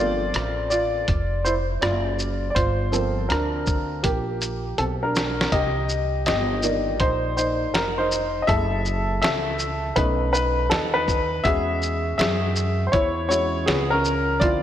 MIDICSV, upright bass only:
0, 0, Header, 1, 2, 480
1, 0, Start_track
1, 0, Tempo, 740741
1, 1660, Time_signature, 4, 2, 24, 8
1, 9478, End_track
2, 0, Start_track
2, 0, Title_t, "Upright bass"
2, 0, Program_c, 0, 32
2, 0, Note_on_c, 0, 31, 86
2, 197, Note_off_c, 0, 31, 0
2, 222, Note_on_c, 0, 33, 87
2, 677, Note_off_c, 0, 33, 0
2, 703, Note_on_c, 0, 29, 86
2, 1158, Note_off_c, 0, 29, 0
2, 1181, Note_on_c, 0, 30, 89
2, 1637, Note_off_c, 0, 30, 0
2, 1660, Note_on_c, 0, 31, 99
2, 2116, Note_off_c, 0, 31, 0
2, 2140, Note_on_c, 0, 38, 89
2, 2596, Note_off_c, 0, 38, 0
2, 2621, Note_on_c, 0, 34, 84
2, 3077, Note_off_c, 0, 34, 0
2, 3100, Note_on_c, 0, 35, 74
2, 3556, Note_off_c, 0, 35, 0
2, 3579, Note_on_c, 0, 36, 89
2, 4062, Note_on_c, 0, 31, 92
2, 4072, Note_off_c, 0, 36, 0
2, 4539, Note_off_c, 0, 31, 0
2, 4539, Note_on_c, 0, 34, 85
2, 5022, Note_off_c, 0, 34, 0
2, 5022, Note_on_c, 0, 29, 87
2, 5477, Note_off_c, 0, 29, 0
2, 5499, Note_on_c, 0, 30, 99
2, 5955, Note_off_c, 0, 30, 0
2, 5981, Note_on_c, 0, 37, 94
2, 6436, Note_off_c, 0, 37, 0
2, 6460, Note_on_c, 0, 35, 100
2, 6916, Note_off_c, 0, 35, 0
2, 6939, Note_on_c, 0, 39, 81
2, 7396, Note_off_c, 0, 39, 0
2, 7420, Note_on_c, 0, 40, 98
2, 7876, Note_off_c, 0, 40, 0
2, 7898, Note_on_c, 0, 42, 99
2, 8355, Note_off_c, 0, 42, 0
2, 8382, Note_on_c, 0, 40, 89
2, 8837, Note_off_c, 0, 40, 0
2, 8863, Note_on_c, 0, 37, 94
2, 9318, Note_off_c, 0, 37, 0
2, 9340, Note_on_c, 0, 38, 104
2, 9478, Note_off_c, 0, 38, 0
2, 9478, End_track
0, 0, End_of_file